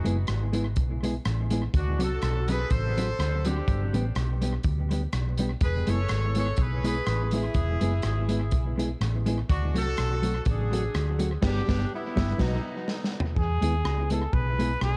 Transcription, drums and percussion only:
0.05 closed hi-hat medium
0.27 cross-stick loud
0.27 closed hi-hat medium
0.53 closed hi-hat medium
0.76 kick loud
0.76 closed hi-hat medium
1.04 closed hi-hat medium
1.25 cross-stick loud
1.25 closed hi-hat medium
1.50 closed hi-hat medium
1.74 kick loud
1.74 closed hi-hat medium
2.00 closed hi-hat medium
2.22 cross-stick loud
2.22 closed hi-hat medium
2.48 closed hi-hat medium
2.70 kick loud
2.70 closed hi-hat medium
2.98 closed hi-hat medium
3.19 cross-stick loud
3.19 closed hi-hat medium
3.45 closed hi-hat medium
3.68 kick loud
3.68 closed hi-hat medium
3.94 closed hi-hat medium
4.15 cross-stick loud
4.15 closed hi-hat medium
4.42 closed hi-hat medium
4.63 kick loud
4.63 closed hi-hat medium
4.91 closed hi-hat medium
5.13 cross-stick loud
5.13 closed hi-hat medium
5.37 closed hi-hat medium
5.61 kick loud
5.61 closed hi-hat medium
5.87 closed hi-hat medium
6.08 cross-stick loud
6.08 closed hi-hat medium
6.35 closed hi-hat medium
6.56 kick loud
6.56 closed hi-hat medium
6.84 closed hi-hat medium
7.06 cross-stick loud
7.06 closed hi-hat medium
7.31 closed hi-hat medium
7.54 kick loud
7.54 closed hi-hat medium
7.81 closed hi-hat medium
8.02 cross-stick loud
8.02 closed hi-hat medium
8.29 closed hi-hat medium
8.51 kick loud
8.51 closed hi-hat medium
8.79 closed hi-hat medium
9.01 cross-stick loud
9.01 closed hi-hat medium
9.26 closed hi-hat medium
9.50 kick loud
9.50 closed hi-hat medium
9.75 closed hi-hat medium
9.97 cross-stick loud
9.97 closed hi-hat medium
10.23 closed hi-hat medium
10.45 kick loud
10.45 closed hi-hat medium
10.73 closed hi-hat medium
10.94 cross-stick loud
10.94 closed hi-hat medium
11.19 closed hi-hat medium
11.42 kick loud
11.42 snare loud
11.42 crash medium
11.69 kick loud
11.69 snare loud
12.17 kick loud
12.17 snare loud
12.39 kick medium
12.39 snare loud
12.39 crash medium
12.88 snare medium
13.04 snare medium
13.20 floor tom medium
13.36 kick loud
13.62 closed hi-hat medium
13.85 cross-stick loud
14.10 closed hi-hat medium
14.33 kick loud
14.59 closed hi-hat medium
14.81 cross-stick loud

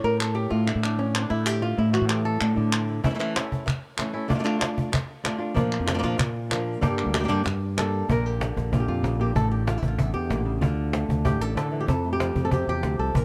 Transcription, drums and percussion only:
0.21 clap medium
0.67 clap medium
0.83 clap medium
1.15 clap medium
1.46 clap medium
1.94 clap medium
2.10 clap medium
2.41 clap medium
2.73 clap loud
3.04 cajon bass loud
3.21 clap medium
3.36 cajon slap loud
3.36 clap medium
3.52 cajon bass medium
3.68 cajon bass medium
3.68 clap medium
3.98 cajon slap medium
3.98 clap medium
4.30 cajon bass medium
4.46 clap medium
4.62 cajon slap loud
4.62 clap medium
4.78 cajon bass medium
4.93 cajon bass loud
4.93 clap medium
5.10 cajon slap soft
5.25 cajon slap loud
5.25 clap medium
5.57 cajon bass medium
5.72 clap medium
5.88 cajon slap loud
5.88 clap medium
6.04 cajon bass medium
6.04 cajon slap soft
6.19 cajon bass medium
6.19 clap medium
6.35 cajon slap soft
6.51 cajon slap medium
6.51 clap medium
6.83 cajon bass loud
6.98 clap medium
7.14 cajon slap loud
7.14 clap medium
7.30 cajon bass medium
7.30 cajon slap soft
7.46 cajon bass loud
7.46 cajon slap soft
7.46 clap medium
7.78 cajon slap medium
7.78 clap medium
8.10 cajon bass loud
8.41 cajon slap loud
8.57 cajon bass medium
8.57 cajon slap soft
8.73 cajon bass medium
9.04 cajon slap medium
9.36 cajon bass medium
9.67 cajon slap loud
9.82 cajon bass medium
9.99 cajon bass loud
10.15 cajon slap soft
10.30 cajon slap medium
10.62 cajon bass medium
10.93 cajon slap loud
11.10 cajon bass medium
11.25 cajon bass loud
11.42 cajon slap soft
11.57 cajon slap medium
11.88 cajon bass loud
12.20 cajon slap loud
12.36 cajon bass medium
12.51 cajon bass loud
12.83 cajon slap medium
13.15 cajon bass loud

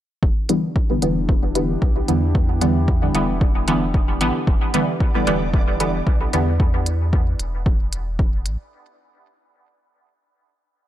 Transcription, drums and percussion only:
0.23 kick loud
0.49 closed hi-hat medium
0.76 kick loud
1.02 closed hi-hat medium
1.29 kick loud
1.55 closed hi-hat medium
1.82 kick loud
2.08 closed hi-hat medium
2.35 kick loud
2.61 closed hi-hat medium
2.88 kick loud
3.15 closed hi-hat medium
3.41 kick loud
3.68 closed hi-hat medium
3.94 kick loud
4.21 closed hi-hat medium
4.47 kick loud
4.74 closed hi-hat medium
5.00 kick loud
5.27 closed hi-hat medium
5.54 kick loud
5.80 closed hi-hat medium
6.07 kick loud
6.33 closed hi-hat medium
6.60 kick loud
6.86 closed hi-hat medium
7.13 kick loud
7.39 closed hi-hat medium
7.66 kick loud
7.93 closed hi-hat medium
8.19 kick loud
8.46 closed hi-hat medium

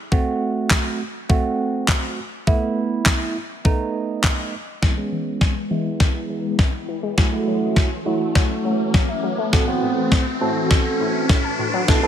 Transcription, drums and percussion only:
0.12 kick loud
0.70 kick loud
0.70 snare medium
0.70 clap loud
1.30 kick loud
1.88 kick loud
1.88 snare medium
1.88 clap loud
2.47 kick loud
3.06 kick loud
3.06 snare medium
3.06 clap loud
3.65 kick loud
4.24 kick loud
4.24 snare medium
4.24 clap loud
4.83 kick loud
4.83 snare medium
5.41 kick loud
5.41 snare medium
6.00 kick loud
6.00 snare medium
6.59 kick loud
6.59 snare medium
7.18 kick loud
7.18 snare medium
7.76 kick loud
7.76 snare medium
8.35 kick loud
8.35 snare medium
8.94 kick loud
8.94 snare medium
9.53 kick loud
9.53 snare medium
10.12 kick loud
10.12 snare medium
10.71 kick loud
10.71 snare medium
11.29 kick loud
11.29 snare medium
11.88 kick loud
11.88 snare medium

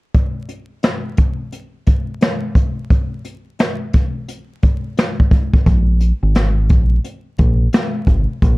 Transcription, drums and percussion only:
0.14 kick loud
0.14 closed hi-hat medium
0.49 closed hi-hat medium
0.83 snare loud
0.83 closed hi-hat medium
1.17 kick loud
1.17 closed hi-hat medium
1.52 closed hi-hat medium
1.87 kick medium
1.87 closed hi-hat medium
2.21 snare loud
2.21 closed hi-hat medium
2.55 kick loud
2.55 closed hi-hat medium
2.90 kick medium
2.90 closed hi-hat medium
3.25 closed hi-hat medium
3.59 snare loud
3.59 closed hi-hat medium
3.93 kick loud
3.93 snare soft
3.93 closed hi-hat medium
4.28 closed hi-hat medium
4.63 kick medium
4.63 closed hi-hat medium
4.97 snare loud
4.97 closed hi-hat medium
5.20 kick medium
5.31 kick loud
5.31 closed hi-hat medium
5.54 kick loud
5.66 kick loud
5.66 closed hi-hat medium
6.01 closed hi-hat medium
6.35 snare loud
6.35 closed hi-hat medium
6.69 kick medium
6.69 closed hi-hat medium
7.04 closed hi-hat medium
7.38 kick medium
7.38 closed hi-hat medium
7.73 snare loud
7.73 closed hi-hat medium
8.07 kick loud
8.07 closed hi-hat medium
8.42 kick loud
8.42 closed hi-hat medium

